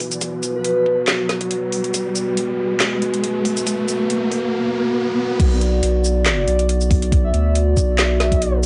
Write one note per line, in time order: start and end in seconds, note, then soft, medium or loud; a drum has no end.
0.00 5.35 B3 medium
0.00 5.35 F#4 medium
0.00 5.36 B4 medium
0.00 riser medium
0.12 closed hi-hat medium
0.12 shaker medium
0.21 kick loud
0.21 closed hi-hat medium
0.21 shaker medium
0.43 closed hi-hat medium
0.43 shaker medium
0.55 0.98 B4 medium
0.64 closed hi-hat medium
0.86 kick medium
1.08 snare loud
1.08 clap medium
1.08 closed hi-hat medium
1.29 snare medium
1.29 closed hi-hat medium
1.41 kick medium
1.41 closed hi-hat medium
1.51 closed hi-hat medium
1.72 open hi-hat medium
1.84 closed hi-hat medium
1.94 kick loud
1.94 closed hi-hat medium
1.94 shaker medium
2.15 closed hi-hat medium
2.15 shaker medium
2.37 closed hi-hat medium
2.80 snare loud
2.80 clap medium
2.80 closed hi-hat medium
3.02 closed hi-hat medium
3.14 closed hi-hat medium
3.24 closed hi-hat medium
3.45 kick loud
3.45 open hi-hat medium
3.57 closed hi-hat medium
3.57 shaker medium
3.67 kick loud
3.67 closed hi-hat medium
3.67 shaker medium
3.88 closed hi-hat medium
3.88 shaker medium
4.10 closed hi-hat medium
4.31 kick medium
4.31 open hi-hat medium
5.39 5.81 B1 loud
5.39 8.66 B3 medium
5.39 8.66 F#4 medium
5.39 8.66 D5 medium
5.39 kick loud
5.39 closed hi-hat medium
5.39 crash loud
5.61 closed hi-hat medium
5.83 6.46 B1 loud
5.83 closed hi-hat medium
6.04 shaker medium
6.26 snare loud
6.26 clap medium
6.26 closed hi-hat medium
6.38 6.69 D5 loud
6.48 7.32 B1 loud
6.48 closed hi-hat medium
6.59 closed hi-hat medium
6.69 closed hi-hat medium
6.81 shaker soft
6.91 kick loud
6.91 open hi-hat medium
7.02 closed hi-hat medium
7.12 kick loud
7.12 closed hi-hat medium
7.24 7.55 E5 loud
7.34 7.75 D2 medium
7.34 closed hi-hat medium
7.55 closed hi-hat medium
7.77 8.66 B1 loud
7.77 kick medium
7.77 shaker medium
7.99 snare loud
7.99 clap loud
7.99 closed hi-hat medium
8.20 8.53 E5 medium
8.20 snare medium
8.20 closed hi-hat medium
8.32 kick medium
8.32 closed hi-hat medium
8.42 closed hi-hat medium